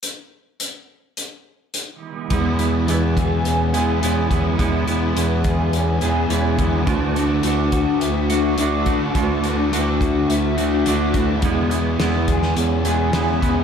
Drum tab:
HH |x---x---x---x---|x-x-x-x-x-x-x-x-|x-x-x-x-x-x-x-x-|x-x-x-x-x-x-x-x-|
SD |----------------|----------------|----------------|----------------|
BD |----------------|o-----o-------o-|o-----o-------o-|o-----o-------o-|

HH |x-x-x-x-x-x-x-x-|x-x-x-x-x-x-x-x-|
SD |----------------|----o--o----o---|
BD |o-----o-------o-|o-----o-------o-|